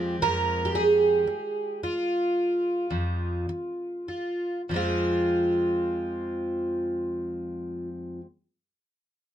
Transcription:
Already playing: twelve-string acoustic guitar F2 F3 G#3 C4 G4
0.22 twelve-string acoustic guitar F2 A#4
0.65 twelve-string acoustic guitar G4
0.75 twelve-string acoustic guitar G#4
1.27 muted twelve-string acoustic guitar stroke
1.83 twelve-string acoustic guitar F4
2.90 twelve-string acoustic guitar F2
3.49 muted twelve-string acoustic guitar stroke
4.08 twelve-string acoustic guitar F4
4.69 twelve-string acoustic guitar F2 F3
4.74 twelve-string acoustic guitar G#3 C4 F4

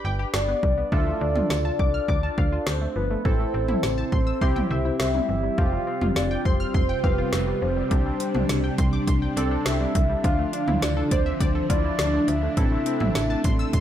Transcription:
Already playing: synth keys D4 G4 B4
0.05 fm bass G1, synth pluck G5
0.19 synth pluck G4
0.34 fm bass G1, synth pluck D4, soft synth lead D5, snare
0.48 synth pluck B3
0.63 fm bass C2, synth pluck G3, kick
0.78 synth pluck B3
0.92 fm bass D2, synth pluck F3, synth keys D4 F4 A4, soft synth lead E5, kick
1.07 synth pluck A3
1.21 fm bass D2, synth pluck D4, soft synth lead D5
1.36 synth pluck F4, mid tom
1.50 fm bass D2, snare
1.65 synth pluck A5
1.79 fm bass C2, soft synth lead D5, synth pluck D6, kick
1.94 synth pluck F6
2.08 fm bass D2, synth pluck D6, kick
2.23 synth pluck A5
2.38 fm bass D2, synth pluck F5, kick
2.52 synth pluck F4
2.67 fm bass D2, synth pluck D4, soft synth lead C5, snare
2.81 synth pluck A3
2.96 fm bass G1, synth pluck F3, soft synth lead B4
3.10 synth pluck A3
3.25 fm bass A1, synth pluck E3, synth keys C4 E4 A4, soft synth lead C5, kick
3.40 synth pluck A3
3.54 fm bass A1, synth pluck C4
3.68 synth pluck E4, mid tom
3.83 fm bass A1, snare
3.98 synth pluck A5
4.12 fm bass A1, synth pluck C6, kick
4.27 synth pluck E6
4.41 fm bass C2, synth keys C4 E4 G4, synth pluck C6, kick
4.56 synth pluck G5, mid tom
4.71 fm bass C2, synth pluck E5
4.85 synth pluck E4
5.00 fm bass C2, synth pluck C4, soft synth lead E5, snare
5.14 synth pluck G3, mid tom
5.29 fm bass G1, synth pluck E3
5.43 synth pluck G3
5.58 fm bass F1, string machine C3 G3 F4, synth pluck F3, synth keys C4 F4 G4, soft synth lead F5, kick
5.72 synth pluck G3
5.87 synth pluck C4
6.01 fm bass F1, synth pluck F4, mid tom
6.16 fm bass F1, soft synth lead D5, snare
6.31 synth pluck G5
6.45 fm bass F1, soft synth lead C5, synth pluck C6, kick
6.60 synth pluck F6
6.74 fm bass F1, synth pluck C6, kick
6.89 synth pluck G5
7.04 fm bass F1, synth keys C4 F4 G4, soft synth lead B4, synth pluck F5, kick
7.18 synth pluck F4
7.33 fm bass F1, synth pluck C4, snare
7.47 synth pluck G3
7.62 fm bass F1, synth pluck F3, soft synth lead C5
7.77 synth pluck G3
7.91 fm bass C2, synth pluck D3, synth keys C4 D4 G4, string machine D4, soft synth lead C5, kick, closed hi-hat
8.06 synth pluck G3
8.20 synth pluck C4, closed hi-hat
8.35 fm bass C2, synth pluck D4, mid tom
8.49 fm bass C2, snare, closed hi-hat
8.64 synth pluck G5
8.78 fm bass C2, synth pluck C6, kick, closed hi-hat
8.93 synth pluck D6
9.07 fm bass C2, synth pluck C6, kick, closed hi-hat
9.22 synth pluck G5
9.37 fm bass C2, synth keys C4 D4 A4, synth pluck D5, closed hi-hat
9.51 synth pluck D4
9.66 fm bass C2, synth pluck C4, soft synth lead E5, snare, closed hi-hat
9.80 synth pluck G3
9.95 fm bass C2, synth pluck D3, kick, closed hi-hat
10.10 synth pluck G3
10.24 fm bass D2, string machine D3 F3 D4, synth pluck F3, synth keys D4 F4, soft synth lead F5, kick, closed hi-hat
10.39 synth pluck A3
10.53 synth pluck D4, closed hi-hat
10.68 fm bass D2, synth pluck E4, mid tom
10.82 fm bass D2, soft synth lead D5, snare, closed hi-hat
10.97 synth pluck A4
11.11 fm bass D2, soft synth lead C5, synth pluck D5, kick, closed hi-hat
11.26 synth pluck E5
11.40 fm bass D2, synth pluck D5, kick, closed hi-hat
11.55 synth pluck A4
11.69 fm bass D2, synth keys D4 E4 F4, synth pluck F4, soft synth lead D5, kick, closed hi-hat
11.84 synth pluck E4
11.99 fm bass D2, synth pluck D4, snare, closed hi-hat
12.13 synth pluck A3
12.28 fm bass D2, synth pluck F3, soft synth lead E5, closed hi-hat
12.43 synth pluck A3
12.57 fm bass A1, string machine C3 A3, synth pluck E3, synth keys C4 E4 A4, soft synth lead E5, kick, closed hi-hat
12.72 synth pluck A3
12.86 synth pluck C4, closed hi-hat
13.00 fm bass A1, synth pluck E4, mid tom
13.15 fm bass A1, snare, closed hi-hat
13.30 synth pluck A5
13.44 fm bass A1, synth pluck C6, kick, closed hi-hat
13.59 synth pluck E6
13.73 fm bass A1, synth pluck C6, kick, closed hi-hat

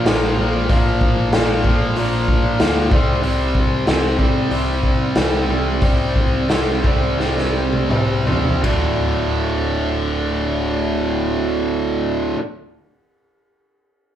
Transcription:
0.06 picked electric bass A#1, distorted electric guitar A#2 F3 A#3, snare, open hi-hat
0.38 picked electric bass A#1, distorted electric guitar A#2 F3 A#3
0.69 picked electric bass A#1, distorted electric guitar A#2 F3 A#3, kick, open hi-hat
1.01 kick
1.32 picked electric bass A#1, distorted electric guitar A#2 F3 A#3, snare, open hi-hat
1.64 picked electric bass A#1, distorted electric guitar A#2 F3 A#3, kick
1.96 picked electric bass A#1, distorted electric guitar A#2 F3 A#3, open hi-hat
2.28 kick
2.60 picked electric bass D2, distorted electric guitar A#2 F3 A#3, snare, open hi-hat
2.91 picked electric bass C2, distorted electric guitar C3 G3 C4, kick
3.22 picked electric bass C2, distorted electric guitar C3 G3 C4, open hi-hat
3.55 picked electric bass C2, kick
3.86 picked electric bass C2, distorted electric guitar C3 G3 C4, snare, open hi-hat
4.19 distorted electric guitar C3 G3 C4, picked electric bass C3, kick
4.50 picked electric bass C2, distorted electric guitar C3 G3 C4, open hi-hat
4.83 picked electric bass C3, kick
5.15 picked electric bass C2, distorted electric guitar C3 G3 C4, snare, open hi-hat
5.48 picked electric bass C2, distorted electric guitar C3 G3 C4
5.81 picked electric bass C2, distorted electric guitar C3 G3 C4, kick, open hi-hat
6.16 kick
6.49 picked electric bass C2, distorted electric guitar C3 G3 C4, snare, open hi-hat
6.84 picked electric bass C2, distorted electric guitar C3 G3 C4, kick
7.18 picked electric bass C2, distorted electric guitar C3 G3 C4, snare
7.38 snare
7.73 high tom
7.89 picked electric bass C2, distorted electric guitar C3 G3 C4, mid tom
8.26 distorted electric guitar C3 G3 C4, floor tom
8.45 floor tom
8.62 picked electric bass D1, distorted electric guitar D2 A2 D3, kick, ride

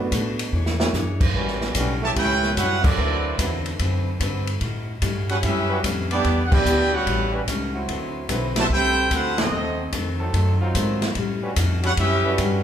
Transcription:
Already playing: upright bass F#2, grand piano A3 B3
0.00 grand piano D4 F#4 B4
0.12 upright bass A2, steel-string acoustic guitar B2 A3 D4 F#4, kick, hi-hat pedal, ride
0.39 ride
0.52 upright bass E2, steel-string acoustic guitar E3 D4 G#4 C#5
0.66 snare
0.79 grand piano G#3 D4 E4 F#4 C#5, snare
0.93 upright bass F#2, steel-string acoustic guitar E3 D4 G#4 C#5, snare, hi-hat pedal
1.21 kick, crash
1.34 upright bass A1, steel-string acoustic guitar A2 G3 C#4 F#4, trombone section G3 C#4 F#4 B4, kick
1.48 snare
1.61 snare
1.75 upright bass B1, steel-string acoustic guitar A2 G3 C#4 F#4, trombone section G3 C#4 F#4 B4, kick, hi-hat pedal, ride
2.01 trombone section C#3 E3 A3, trumpet section G4 C#5 E5 A5
2.14 upright bass C#2, steel-string acoustic guitar A2 G3, trombone section C#4 E4 G4, trumpet section E4 B4 C#5 G5, kick, ride
2.19 steel-string acoustic guitar C#4 F#4
2.43 snare
2.54 upright bass F#2, steel-string acoustic guitar A2 G3, trombone section G3 C#4 F#4, trumpet section E4 B4 C#5 E5 F#5, kick, hi-hat pedal, ride
2.59 steel-string acoustic guitar C#4 F#4
2.82 trombone section F#3 A3 D4, trumpet section C4 F#4 A4 D5, kick, crash
2.96 upright bass D2, steel-string acoustic guitar D3 C4, trombone section F#3 C4 E4 B4
3.01 steel-string acoustic guitar F#4 B4
3.38 upright bass E2, steel-string acoustic guitar D3 C4 F#4 B4, trombone section F#3 C4 E4 B4, kick, hi-hat pedal, ride
3.66 ride
3.79 upright bass F#2, steel-string acoustic guitar D3 C4 F#4 B4, kick, ride
4.20 upright bass G2, steel-string acoustic guitar D3 C4 F#4 B4, kick, hi-hat pedal, ride
4.47 ride
4.60 steel-string acoustic guitar A2 G3 C#4 F#4, upright bass A2, kick, ride
5.02 upright bass G2, steel-string acoustic guitar A2 G3 C#4 F#4, kick, hi-hat pedal, ride
5.29 trombone section G3 C#4 F#4, trumpet section E4 B4 C#5 F#5, ride
5.42 upright bass F#2, steel-string acoustic guitar A2 G3 C#4 F#4, trombone section C#4 E4 G4, trumpet section C#4 G4 B4 E5, kick, ride
5.70 trombone section G3 C#4 F#4 B4
5.83 upright bass F2, steel-string acoustic guitar A2 G3 C#4 F#4, kick, hi-hat pedal, ride
6.10 trombone section G3 B3 D4, trumpet section B3 E4 G4 D5, ride
6.24 upright bass E2, steel-string acoustic guitar E3 B3 D4 G4, kick, ride
6.44 trumpet section F#5
6.50 trombone section B3 D4 G4, trumpet section E4 B4 D5 G5, kick, crash
6.65 upright bass D2, steel-string acoustic guitar E3 B3 D4 G4, hi-hat pedal
6.92 trombone section G3 C#4 F#4, trumpet section E4 B4 C#5 F#5
7.06 upright bass A1, steel-string acoustic guitar A2 G3 C#4 F#4, kick, ride
7.32 trombone section G3 C#4 F#4 B4
7.47 upright bass C#2, steel-string acoustic guitar A2 G3 C#4 F#4, kick, hi-hat pedal, ride
7.74 trombone section F#3 C4 E4 F#4
7.88 upright bass D2, steel-string acoustic guitar D3 C4 F#4 B4, kick, ride
8.28 upright bass B1, steel-string acoustic guitar D3 C4 F#4 B4, trombone section F#3 C4 E4 B4, kick, hi-hat pedal, ride
8.56 trombone section C3 F#3 A3, trumpet section C5, snare, ride
8.60 trumpet section F#4 E5 A5
8.70 upright bass C2, steel-string acoustic guitar D3 C4 F#4 B4, trombone section A3 C4 G4, trumpet section E4 A4 C5 G5, kick
9.11 upright bass D2, steel-string acoustic guitar D3 C4 F#4 B4, trombone section A3 C4 F#4, trumpet section E4 A4 C5 F#5, kick, hi-hat pedal, ride
9.37 trombone section F#3 A3 C4 D#4 A4, snare, ride
9.41 trumpet section C4 F#4 A4 D#5
9.51 upright bass D#2, steel-string acoustic guitar D#3 A3 C4 F#4
9.92 upright bass F2, steel-string acoustic guitar D#3 A3 C4 F#4, kick, hi-hat pedal, ride
10.19 trombone section F#3 C4 D#4 A4
10.33 upright bass F#2, steel-string acoustic guitar D#3 A3 C4 F#4, kick, ride
10.61 trombone section F#3 C4 D#4 F4
10.75 upright bass G#2, steel-string acoustic guitar D#3 A3 C4 F#4, kick, hi-hat pedal, ride
11.02 snare, ride
11.15 upright bass A2, steel-string acoustic guitar A2 G3 C#4, kick, ride
11.19 steel-string acoustic guitar F#4
11.42 trombone section G3 C#4 F#4 B4
11.56 upright bass F2, steel-string acoustic guitar A2 G3 C#4 F#4, kick, hi-hat pedal, ride
11.83 trombone section G3 C#4 F#4, trumpet section E4 B4 C#5 F#5, ride
11.96 upright bass F#2, steel-string acoustic guitar A2 G3 C#4 F#4, trombone section C#4 E4 G4, trumpet section C#4 G4 B4 E5, kick, ride
12.25 trombone section G3 C#4 F#4 B4
12.38 upright bass G2, steel-string acoustic guitar A2 G3 C#4 F#4, kick, hi-hat pedal, ride

